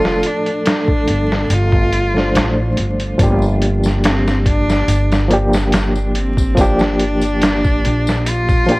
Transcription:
Already playing: upright bass F1, reed electric piano F3 A3 D4 A4, cello F4
0.05 snare
0.23 cello D4, closed hi-hat
0.46 closed hi-hat
0.66 cello D4, snare, closed hi-hat
0.88 kick
1.08 upright bass G1, closed hi-hat
1.32 snare
1.50 upright bass G1, cello F4, closed hi-hat
1.73 kick
1.93 closed hi-hat
2.14 reed electric piano F3 A3 D4, snare
2.19 reed electric piano C5
2.35 upright bass A1, snare, closed hi-hat
2.77 upright bass G1, closed hi-hat
3.00 closed hi-hat
3.18 upright bass G1, reed electric piano F3 A#3 D4, kick, closed hi-hat, tambourine
3.23 reed electric piano G4
3.42 tambourine
3.62 closed hi-hat
3.83 snare, tambourine
4.04 cello C4, snare, closed hi-hat, tambourine
4.28 snare, tambourine
4.46 cello D4, kick, closed hi-hat
4.70 snare, tambourine
4.88 upright bass G1, closed hi-hat, tambourine
5.12 snare, tambourine
5.28 reed electric piano F3 A#3 D4, closed hi-hat
5.33 reed electric piano G4
5.53 snare, tambourine
5.72 snare, closed hi-hat, tambourine
5.96 tambourine
6.15 cello C4, closed hi-hat
6.37 kick, tambourine
6.55 reed electric piano F3 A#3 D4, kick, closed hi-hat, tambourine
6.59 cello D4, reed electric piano G4
6.79 snare, tambourine
6.99 closed hi-hat
7.21 closed hi-hat, tambourine
7.41 snare, closed hi-hat, tambourine
7.64 kick, tambourine
7.84 upright bass A#1, closed hi-hat
8.07 snare, tambourine
8.26 cello F4, closed hi-hat, tambourine
8.49 kick, tambourine
8.66 reed electric piano F3 A#3 D4, closed hi-hat
8.71 reed electric piano G4

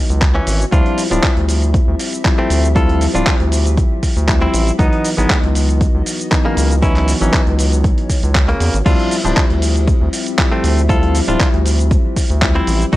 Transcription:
Already playing: synth stab E3 F#3 B3 D#4, ambient pad E3 B3 F#4 D#5
0.10 analog synth bass C#2, closed hi-hat, cabasa
0.22 kick, clap, closed hi-hat, cabasa
0.35 clean electric guitar E3 C#4
0.47 analog synth bass G#1, open hi-hat, cabasa
0.60 closed hi-hat, cabasa
0.72 analog synth bass D2, synth stab F3 G3 C4 E4, ambient pad F3 C4 G4 E5, clean electric guitar D4 F4, kick, closed hi-hat, cabasa
0.86 closed hi-hat
0.98 open hi-hat, cabasa
1.10 analog synth bass D1, synth stab F3 G3 C4 E4, clean electric guitar F3 D4, closed hi-hat, cabasa
1.23 kick, clap, closed hi-hat, cabasa
1.37 analog synth bass D2, closed hi-hat
1.49 open hi-hat, cabasa
1.62 closed hi-hat, cabasa
1.74 kick, closed hi-hat, cabasa
1.88 analog synth bass D2
2.00 open hi-hat, cabasa
2.13 closed hi-hat, cabasa
2.24 synth stab F3 G3 C4 E4, kick, clap, closed hi-hat, cabasa
2.38 clean electric guitar A3 C4
2.50 analog synth bass D2, open hi-hat, cabasa
2.64 closed hi-hat, cabasa
2.75 synth stab F3 G3 C4 E4, clean electric guitar F4 A4, kick, closed hi-hat, cabasa
2.89 closed hi-hat
3.01 open hi-hat, cabasa
3.14 analog synth bass D1, synth stab F3 G3 C4 E4, clean electric guitar D4 F4, closed hi-hat, cabasa
3.27 kick, clap, closed hi-hat, cabasa
3.40 analog synth bass D2, closed hi-hat
3.52 open hi-hat, cabasa
3.66 closed hi-hat, cabasa
3.77 kick, closed hi-hat, cabasa
4.03 kick, open hi-hat, cabasa
4.16 analog synth bass D2, closed hi-hat, cabasa
4.28 synth stab F3 G3 C4 E4, kick, clap, closed hi-hat, cabasa
4.42 clean electric guitar C4 E4
4.54 analog synth bass A1, open hi-hat, cabasa
4.67 closed hi-hat, cabasa
4.79 analog synth bass C#2, synth stab E3 F#3 B3 D#4, ambient pad E3 B3 F#4 D#5, clean electric guitar B3 D#4, kick, closed hi-hat, cabasa
4.93 closed hi-hat
5.05 open hi-hat, cabasa
5.17 analog synth bass G#1, synth stab E3 F#3 B3 D#4, clean electric guitar G#3 B3, cabasa
5.30 kick, clap, closed hi-hat, cabasa
5.43 analog synth bass C#2, closed hi-hat
5.55 open hi-hat, cabasa
5.69 closed hi-hat, cabasa
5.81 kick, closed hi-hat, cabasa
5.94 analog synth bass C#2
6.06 open hi-hat, cabasa
6.20 closed hi-hat, cabasa
6.31 synth stab E3 F#3 B3 D#4, kick, clap, closed hi-hat, cabasa
6.45 clean electric guitar C#3 A#3
6.57 analog synth bass C#2, open hi-hat, cabasa
6.71 closed hi-hat, cabasa
6.82 synth stab E3 F#3 B3 D#4, clean electric guitar C#4 E4, ambient pad C#5, kick, closed hi-hat, cabasa
6.96 clap, closed hi-hat
7.08 open hi-hat, cabasa
7.20 analog synth bass G#1, synth stab E3 F#3 B3 D#4, clean electric guitar E3 C#4, closed hi-hat, cabasa
7.33 kick, clap, closed hi-hat, cabasa
7.47 analog synth bass C#2, closed hi-hat
7.59 open hi-hat, cabasa
7.72 closed hi-hat, cabasa
7.84 kick, closed hi-hat, cabasa
7.98 closed hi-hat
8.10 kick, open hi-hat, cabasa
8.23 analog synth bass C#2, closed hi-hat, cabasa
8.35 kick, clap, closed hi-hat, cabasa
8.48 clean electric guitar C#3 A#3, closed hi-hat
8.60 analog synth bass E2, open hi-hat, cabasa
8.74 analog synth bass G#1, closed hi-hat, cabasa
8.85 analog synth bass D2, synth stab F3 G3 C4 E4, ambient pad F3 C4 G4 E5, clean electric guitar D4 F4, kick, closed hi-hat, crash, cabasa
8.99 closed hi-hat
9.11 open hi-hat, cabasa
9.24 analog synth bass D1, synth stab F3 G3 C4 E4, clean electric guitar F3 D4, closed hi-hat, cabasa
9.37 kick, clap, closed hi-hat, cabasa
9.50 analog synth bass D2, closed hi-hat
9.62 open hi-hat, cabasa
9.76 closed hi-hat, cabasa
9.88 kick, closed hi-hat, cabasa
10.01 analog synth bass D2
10.13 open hi-hat, cabasa
10.27 closed hi-hat, cabasa
10.38 synth stab F3 G3 C4 E4, kick, clap, closed hi-hat, cabasa
10.52 clean electric guitar A3 C4
10.64 analog synth bass D2, open hi-hat, cabasa
10.77 closed hi-hat, cabasa
10.89 synth stab F3 G3 C4 E4, clean electric guitar F4 A4, kick, closed hi-hat, cabasa
11.03 closed hi-hat
11.15 open hi-hat, cabasa
11.27 analog synth bass D1, synth stab F3 G3 C4 E4, clean electric guitar D4 F4, closed hi-hat, cabasa
11.40 kick, clap, closed hi-hat, cabasa
11.54 analog synth bass D2, closed hi-hat
11.66 open hi-hat, cabasa
11.79 closed hi-hat, cabasa
11.91 kick, closed hi-hat, cabasa
12.16 kick, open hi-hat, cabasa
12.30 analog synth bass D2, closed hi-hat, cabasa
12.41 synth stab F3 G3 C4 E4, kick, clap, closed hi-hat, cabasa
12.55 clean electric guitar C4 E4
12.67 analog synth bass A1, open hi-hat, cabasa
12.81 closed hi-hat, cabasa
12.92 analog synth bass C#2, synth stab E3 F#3 B3 D#4, ambient pad E3 B3 F#4, clean electric guitar D#4 F#4, kick, closed hi-hat, cabasa

